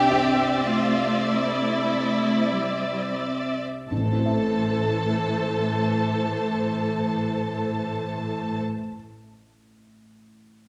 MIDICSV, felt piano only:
0, 0, Header, 1, 2, 480
1, 0, Start_track
1, 0, Key_signature, 0, "minor"
1, 0, Tempo, 1195219
1, 519, Tempo, 1268499
1, 999, Tempo, 1345291
1, 1479, Time_signature, 4, 2, 24, 8
1, 3896, End_track
2, 0, Start_track
2, 0, Title_t, "Felt piano"
2, 0, Program_c, 0, 0
2, 0, Control_c, 0, 64, 127
2, 0, Note_on_c, 0, 36, 42
2, 40, Note_on_c, 0, 62, 32
2, 42, Note_on_c, 0, 76, 36
2, 45, Note_on_c, 0, 67, 38
2, 1466, Note_off_c, 0, 62, 0
2, 1466, Note_off_c, 0, 76, 0
2, 1468, Note_off_c, 0, 67, 0
2, 1480, Note_on_c, 0, 33, 28
2, 1489, Note_off_c, 0, 36, 0
2, 1489, Control_c, 0, 64, 0
2, 1504, Note_on_c, 0, 45, 25
2, 1530, Note_on_c, 0, 60, 27
2, 1551, Control_c, 0, 64, 127
2, 1555, Note_on_c, 0, 64, 26
2, 1580, Note_on_c, 0, 69, 23
2, 1604, Note_on_c, 0, 76, 25
2, 3149, Note_off_c, 0, 33, 0
2, 3173, Note_off_c, 0, 45, 0
2, 3199, Note_off_c, 0, 60, 0
2, 3224, Note_off_c, 0, 64, 0
2, 3249, Note_off_c, 0, 69, 0
2, 3272, Note_off_c, 0, 76, 0
2, 3896, End_track
0, 0, End_of_file